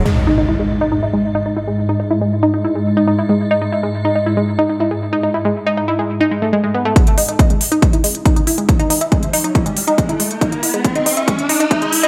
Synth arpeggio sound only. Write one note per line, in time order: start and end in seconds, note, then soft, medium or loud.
0.06 0.15 G#3 medium
0.27 0.31 D#4 loud
0.38 0.44 D#4 medium
0.49 0.55 E4 medium
0.59 0.69 G#3 medium
0.81 0.85 D#4 loud
0.92 0.98 D#4 medium
1.03 1.09 E4 medium
1.13 1.23 G#3 medium
1.35 1.39 D#4 loud
1.46 1.52 D#4 medium
1.57 1.63 E4 medium
1.67 1.77 G#3 medium
1.89 1.93 D#4 loud
2.00 2.06 D#4 medium
2.11 2.17 E4 medium
2.21 2.31 G#3 medium
2.43 2.47 D#4 loud
2.54 2.60 D#4 medium
2.64 2.71 E4 medium
2.75 2.85 G#3 medium
2.97 3.01 D#4 loud
3.08 3.14 D#4 medium
3.19 3.25 E4 medium
3.29 3.39 G#3 medium
3.51 3.55 D#4 loud
3.62 3.68 D#4 medium
3.72 3.79 E4 medium
3.83 3.93 G#3 medium
4.05 4.09 D#4 loud
4.15 4.22 D#4 medium
4.26 4.33 E4 medium
4.37 4.47 G#3 medium
4.59 4.63 D#4 loud
4.69 4.76 D#4 medium
4.80 4.87 E4 medium
4.91 5.01 G#3 medium
5.13 5.17 D#4 loud
5.23 5.30 D#4 medium
5.34 5.41 E4 medium
5.45 5.55 G#3 medium
5.67 5.71 D#4 loud
5.77 5.84 D#4 medium
5.88 5.95 E4 medium
5.99 6.09 G#3 medium
6.21 6.25 D#4 loud
6.31 6.38 G#3 medium
6.42 6.49 A3 medium
6.53 6.60 G#3 medium
6.64 6.70 G#3 medium
6.74 6.81 B3 medium
6.85 6.95 A3 loud
7.18 7.22 D#4 loud
7.29 7.35 D#4 medium
7.39 7.46 E4 medium
7.50 7.60 G#3 medium
7.72 7.76 D#4 loud
7.82 7.89 D#4 medium
7.93 8.00 E4 medium
8.04 8.14 G#3 medium
8.25 8.30 D#4 loud
8.36 8.43 D#4 medium
8.47 8.54 E4 medium
8.58 8.68 G#3 medium
8.80 8.84 D#4 loud
8.90 8.97 D#4 medium
9.01 9.08 E4 medium
9.12 9.22 G#3 medium
9.33 9.37 D#4 loud
9.44 9.51 D#4 medium
9.55 9.62 E4 medium
9.66 9.76 G#3 medium
9.87 9.91 D#4 loud
9.98 10.05 D#4 medium
10.09 10.16 E4 medium
10.20 10.30 G#3 medium
10.41 10.45 D#4 loud
10.52 10.59 D#4 medium
10.63 10.70 E4 medium
10.74 10.84 G#3 medium
10.95 10.99 D#4 loud
11.06 11.13 D#4 medium
11.17 11.24 E4 medium
11.28 11.38 G#3 medium
11.49 11.53 D#4 loud
11.60 11.67 D#4 medium
11.71 11.78 E4 medium
11.82 11.92 G#3 medium
12.03 12.07 D#4 loud